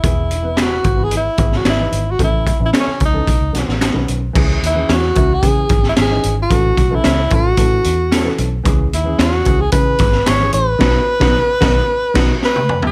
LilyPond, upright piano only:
\new Staff \with { instrumentName = "Upright piano" } { \time 4/4 \key cis \minor \tempo 4 = 111 <e b gis'>8 r16 <e b b'>8 r8 <e b b'>8 r16 <e b gis'>8 r16 <e b dis'>8 r16 | <e cis' a'>8 r16 <e cis' e'>8 r8 <e cis' a'>16 r8 <dis b fis'>8 r16 <dis b cis'>8 r16 | <e cis' gis'>8 r16 <e cis' gis'>8 r16 <e cis' e'>16 r16 <e cis' gis'>8. r8 <e cis' dis'>8 r16 | <e cis' a'>8 r16 <e cis' a'>8 r16 <e cis' a'>16 r16 <e cis' a'>8. r8 <e cis' a'>8 r16 |
<e cis' gis'>8 r16 <e cis' gis'>8 r16 <e cis' gis'>16 r16 <e cis' gis'>8. r8 <e cis' gis'>8 r16 | <dis b fis'>8 r16 <dis b fis'>8 r16 <dis b dis'>8 r8 <dis b fis'>8 r4 | }